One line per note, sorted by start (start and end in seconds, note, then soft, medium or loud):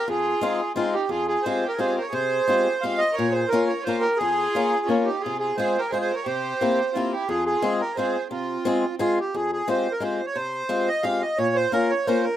0.08 0.33 F2 soft
0.08 0.72 F4 medium
0.08 0.73 G#4 medium
0.41 0.59 G#3 medium
0.41 0.60 C4 soft
0.41 0.60 D#4 soft
0.41 0.60 F4 medium
0.75 0.94 G#3 medium
0.75 0.93 C4 medium
0.75 0.94 C4 medium
0.75 0.94 D#4 soft
0.75 0.94 F4 medium
0.75 0.95 F4 medium
0.93 1.08 D#4 medium
0.93 1.10 G4 medium
1.09 1.36 F2 soft
1.09 1.27 F4 medium
1.09 1.27 G#4 medium
1.28 1.43 F4 medium
1.28 1.45 G#4 medium
1.43 1.64 G#3 medium
1.43 1.64 C4 medium
1.43 1.65 G#4 medium
1.43 1.67 C5 medium
1.47 1.64 F4 soft
1.47 1.64 G4 soft
1.66 1.76 G4 medium
1.66 1.80 A#4 medium
1.76 1.97 G#3 soft
1.76 1.98 C4 soft
1.76 1.97 F4 soft
1.76 1.98 G4 soft
1.76 1.98 G#4 medium
1.76 2.03 C5 medium
1.98 2.09 A#4 medium
1.98 2.13 C#5 medium
2.10 2.39 C3 medium
2.10 2.76 G#4 medium
2.10 2.84 C5 loud
2.48 2.66 G#3 medium
2.48 2.66 C4 soft
2.48 2.67 F4 medium
2.48 2.67 G4 medium
2.79 2.96 C5 medium
2.79 3.00 F5 medium
2.83 3.01 G#3 medium
2.83 3.01 C4 soft
2.83 3.01 F4 soft
2.83 3.01 G4 soft
2.97 3.12 C5 medium
2.97 3.15 D#5 loud
3.13 3.31 A#4 medium
3.13 3.33 C#5 medium
3.19 3.43 A#2 medium
3.31 3.47 G#4 medium
3.31 3.50 C5 medium
3.48 3.66 F4 medium
3.48 3.68 A#4 medium
3.52 3.70 A#3 medium
3.52 3.70 C#4 medium
3.52 3.70 F4 medium
3.52 3.70 A#4 medium
3.67 3.82 A#4 medium
3.67 3.84 C#5 medium
3.83 4.04 A#3 medium
3.83 4.00 F4 medium
3.83 4.03 C5 medium
3.87 4.04 C#4 soft
3.87 4.04 F4 soft
3.87 4.05 A#4 medium
4.00 4.17 G4 medium
4.00 4.18 A#4 medium
4.17 4.46 F2 medium
4.17 4.83 F4 medium
4.17 4.89 G#4 medium
4.55 4.72 A#3 medium
4.55 4.73 C#4 medium
4.55 4.73 F4 soft
4.55 4.73 A#4 medium
4.85 5.07 A#3 medium
4.85 5.02 C#4 medium
4.85 5.06 F4 medium
4.90 5.07 C#4 medium
4.90 5.07 F4 soft
4.90 5.07 A#4 soft
5.02 5.19 D#4 medium
5.02 5.22 G4 medium
5.20 5.39 F4 medium
5.20 5.37 G#4 medium
5.26 5.51 C3 soft
5.39 5.55 F4 medium
5.39 5.57 G#4 medium
5.57 5.76 G#3 medium
5.57 5.76 C4 medium
5.57 5.76 F4 soft
5.57 5.78 G#4 medium
5.57 5.77 G#4 medium
5.57 5.81 C5 medium
5.79 5.88 G4 medium
5.79 5.91 A#4 medium
5.89 6.10 G#3 soft
5.89 5.96 G#4 medium
5.89 5.98 C5 medium
5.93 6.11 C4 soft
5.93 6.11 F4 soft
5.93 6.11 G#4 medium
5.93 6.00 G#4 medium
6.01 6.13 G#4 medium
6.01 6.15 C5 medium
6.13 6.25 A#4 medium
6.13 6.27 C#5 medium
6.25 6.52 C3 medium
6.25 6.90 G4 medium
6.25 6.96 C5 medium
6.61 6.79 A#3 medium
6.61 6.79 C4 medium
6.61 6.79 E4 medium
6.61 6.79 G4 medium
6.93 7.13 A#3 soft
6.93 7.11 C4 medium
6.93 7.13 C4 soft
6.93 7.13 E4 soft
6.93 7.12 F4 medium
6.97 7.14 G4 medium
7.12 7.28 E4 medium
7.12 7.28 G4 medium
7.29 7.54 F2 medium
7.29 7.46 F4 medium
7.29 7.44 G#4 medium
7.46 7.79 F4 medium
7.46 7.81 G#4 medium
7.62 7.80 G#3 medium
7.62 7.81 C4 medium
7.62 7.81 F4 medium
7.62 7.81 G#4 medium
7.80 7.94 G4 medium
7.80 7.97 A#4 medium
7.95 8.15 G#3 soft
7.95 8.15 C4 soft
7.95 8.16 F4 soft
7.95 8.27 G#4 medium
7.95 8.28 C5 medium
7.99 8.16 G#4 soft
8.30 8.57 C3 medium
8.30 8.95 C4 medium
8.30 8.95 F4 medium
8.65 8.84 G#3 medium
8.65 8.83 C4 medium
8.65 8.84 F4 medium
8.65 8.84 G#4 medium
8.99 9.18 G#3 medium
8.99 9.18 C4 medium
8.99 9.19 F4 medium
8.99 9.18 F4 medium
8.99 9.18 G#4 medium
9.20 9.35 G4 medium
9.34 9.60 F2 medium
9.34 9.51 G#4 medium
9.53 9.69 G#4 medium
9.68 9.86 G#3 medium
9.68 9.87 C4 medium
9.68 9.86 F4 soft
9.68 9.87 G4 medium
9.68 9.93 C5 medium
9.92 10.03 A#4 medium
10.00 10.20 G#3 soft
10.00 10.20 C4 soft
10.00 10.20 F4 soft
10.00 10.20 G4 soft
10.00 10.26 C5 medium
10.26 10.37 C#5 medium
10.35 10.62 C3 medium
10.35 10.89 C5 medium
10.69 10.88 G#3 medium
10.69 10.88 C4 soft
10.69 10.88 F4 medium
10.69 10.88 G4 medium
10.88 11.05 D#5 loud
11.03 11.22 G#3 medium
11.03 11.22 C4 soft
11.03 11.22 F4 medium
11.03 11.23 G4 medium
11.03 11.22 F5 medium
11.21 11.38 D#5 medium
11.38 11.64 A#2 medium
11.38 11.57 C#5 medium
11.56 11.72 C5 medium
11.72 11.91 A#3 medium
11.72 11.91 C#4 medium
11.72 11.91 F4 medium
11.72 11.91 A#4 medium
11.90 12.07 C#5 medium
12.06 12.25 A#3 medium
12.06 12.25 C#4 soft
12.06 12.26 F4 medium
12.06 12.26 A#4 medium
12.06 12.25 C5 medium
12.24 12.37 A#4 medium